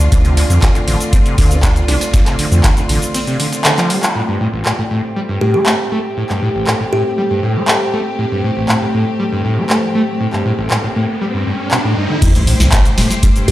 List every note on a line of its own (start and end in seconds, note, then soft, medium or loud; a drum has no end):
0.00 4.11 D3 medium
0.00 4.11 A3 medium
0.00 4.11 C4 medium
0.00 4.11 F4 medium
0.00 4.15 F4 medium
0.00 5.90 D5 medium
0.00 6.12 C6 medium
0.12 0.44 D2 loud
0.12 0.19 D3 medium
0.12 kick loud
0.12 closed hi-hat medium
0.12 tambourine medium
0.12 shaker medium
0.25 0.35 C3 medium
0.25 closed hi-hat soft
0.25 shaker soft
0.37 0.44 D3 loud
0.37 open hi-hat loud
0.37 tambourine medium
0.50 0.60 D2 medium
0.50 0.59 F2 medium
0.50 closed hi-hat soft
0.50 shaker medium
0.62 0.69 D3 medium
0.62 kick loud
0.62 snare loud
0.62 clap loud
0.62 closed hi-hat medium
0.62 tambourine medium
0.62 shaker medium
0.75 0.79 D3 medium
0.75 closed hi-hat soft
0.75 shaker soft
0.88 0.97 A1 medium
0.88 0.98 D3 medium
0.88 open hi-hat medium
0.88 tambourine medium
1.00 closed hi-hat soft
1.00 shaker medium
1.13 1.17 C4 medium
1.13 kick loud
1.13 closed hi-hat medium
1.13 tambourine medium
1.13 shaker medium
1.26 1.36 C3 medium
1.26 closed hi-hat soft
1.26 shaker soft
1.38 1.83 D2 loud
1.38 1.52 D3 loud
1.38 kick medium
1.38 open hi-hat loud
1.38 tambourine medium
1.51 1.58 D4 loud
1.51 snare soft
1.51 closed hi-hat soft
1.51 shaker medium
1.63 1.70 D4 medium
1.63 kick loud
1.63 snare loud
1.63 clap loud
1.63 closed hi-hat medium
1.63 tambourine medium
1.63 shaker medium
1.76 snare soft
1.76 closed hi-hat soft
1.76 shaker soft
1.88 1.98 C2 medium
1.88 1.95 D4 loud
1.88 snare loud
1.88 open hi-hat medium
1.88 tambourine medium
2.01 snare loud
2.01 closed hi-hat soft
2.01 tambourine medium
2.01 shaker medium
2.14 2.21 D3 medium
2.14 kick loud
2.14 snare loud
2.14 closed hi-hat loud
2.14 tambourine medium
2.14 shaker medium
2.26 2.37 C3 medium
2.26 snare loud
2.26 clap soft
2.26 closed hi-hat soft
2.26 tambourine medium
2.26 shaker soft
2.39 2.46 D3 loud
2.39 open hi-hat loud
2.39 tambourine medium
2.52 2.62 D2 medium
2.52 2.61 F2 medium
2.52 closed hi-hat soft
2.52 shaker medium
2.64 2.71 D3 medium
2.64 kick loud
2.64 snare loud
2.64 clap loud
2.64 closed hi-hat loud
2.64 tambourine medium
2.64 shaker medium
2.77 2.81 D3 medium
2.77 closed hi-hat soft
2.77 shaker soft
2.89 2.98 A1 medium
2.89 3.00 D3 medium
2.89 open hi-hat loud
2.89 tambourine medium
3.02 closed hi-hat soft
3.02 shaker medium
3.14 3.19 C4 medium
3.14 closed hi-hat loud
3.14 open hi-hat medium
3.14 shaker medium
3.27 3.38 C3 medium
3.27 closed hi-hat soft
3.27 shaker soft
3.40 3.47 D3 medium
3.40 open hi-hat loud
3.40 tambourine medium
3.52 snare medium
3.52 closed hi-hat soft
3.52 shaker medium
3.65 3.72 D3 loud
3.65 snare loud
3.65 clap loud
3.65 closed hi-hat loud
3.65 tambourine medium
3.65 shaker medium
3.78 3.92 F3 loud
3.78 snare soft
3.78 clap medium
3.78 closed hi-hat soft
3.78 shaker soft
3.90 4.01 G3 medium
3.90 open hi-hat loud
3.90 tambourine medium
4.03 clap loud
4.03 closed hi-hat soft
4.03 shaker medium
4.15 4.22 A2 medium
4.15 12.18 A2 medium
4.15 12.18 A3 medium
4.15 12.18 C4 medium
4.15 12.22 G4 medium
4.15 12.18 G4 medium
4.28 4.38 G2 medium
4.41 4.48 A2 loud
4.53 4.64 A1 medium
4.53 12.22 C5 medium
4.65 4.73 A2 medium
4.65 clap loud
4.79 4.83 A2 medium
4.91 5.02 A2 medium
5.08 12.22 A5 medium
5.16 5.20 G3 medium
5.29 5.39 G2 medium
5.41 5.56 A2 loud
5.41 5.50 G4 medium
5.54 5.61 A3 loud
5.54 5.62 G4 medium
5.66 5.74 A3 medium
5.66 clap loud
5.92 5.99 A3 loud
6.17 6.24 A2 medium
6.29 6.40 G2 medium
6.29 clap soft
6.42 6.49 A2 loud
6.55 6.65 A1 medium
6.67 6.74 A2 medium
6.67 clap loud
6.80 6.84 A2 medium
6.93 7.03 A2 medium
6.93 7.63 G4 medium
7.18 7.22 G3 medium
7.31 7.41 G2 medium
7.43 7.57 A2 loud
7.56 7.63 A3 loud
7.68 7.75 A3 medium
7.68 clap loud
7.93 8.01 A3 loud
8.19 8.26 A2 medium
8.19 riser medium
8.32 8.42 G2 medium
8.44 8.51 A2 loud
8.57 8.67 A1 medium
8.69 8.76 A2 medium
8.69 clap loud
8.82 8.86 A2 medium
8.94 9.05 A2 medium
9.20 9.24 G3 medium
9.32 9.43 G2 medium
9.45 9.59 A2 loud
9.58 9.64 A3 medium
9.70 9.77 A3 medium
9.70 clap loud
9.95 10.02 A3 loud
10.20 10.27 A2 medium
10.33 10.43 G2 medium
10.33 clap soft
10.46 10.53 A2 loud
10.58 10.69 A1 medium
10.70 10.78 A2 medium
10.70 clap loud
10.84 10.88 A2 medium
10.96 11.07 A2 medium
11.21 11.25 G3 medium
11.34 11.44 G2 medium
11.46 11.53 G2 medium
11.71 11.79 B2 medium
11.71 clap loud
11.84 11.95 A2 loud
11.97 12.07 G2 medium
12.10 12.16 D3 medium
12.22 12.54 A1 loud
12.22 12.29 A2 medium
12.22 13.52 A3 medium
12.22 13.52 E4 medium
12.22 13.52 G4 medium
12.22 13.52 C5 medium
12.22 kick loud
12.22 closed hi-hat medium
12.22 tambourine medium
12.22 crash loud
12.22 sub drop medium
12.22 shaker medium
12.35 12.45 G2 medium
12.35 closed hi-hat soft
12.35 shaker soft
12.47 12.54 A2 loud
12.47 open hi-hat loud
12.47 tambourine medium
12.60 12.70 A1 medium
12.60 12.69 C2 medium
12.60 snare medium
12.60 closed hi-hat soft
12.60 shaker medium
12.72 12.80 A2 medium
12.72 kick loud
12.72 snare loud
12.72 clap loud
12.72 closed hi-hat loud
12.72 tambourine medium
12.72 shaker medium
12.85 12.89 A2 medium
12.85 closed hi-hat soft
12.85 shaker soft
12.98 13.07 E1 medium
12.98 13.08 A2 medium
12.98 snare medium
12.98 open hi-hat medium
12.98 tambourine medium
13.11 snare medium
13.11 closed hi-hat soft
13.11 shaker medium
13.23 13.27 G3 medium
13.23 kick loud
13.23 closed hi-hat loud
13.23 tambourine medium
13.23 shaker medium
13.36 13.46 G2 medium
13.36 closed hi-hat soft
13.36 shaker soft
13.48 13.52 A1 loud
13.48 13.52 A2 loud
13.48 13.52 G4 medium
13.48 kick medium
13.48 open hi-hat loud
13.48 tambourine medium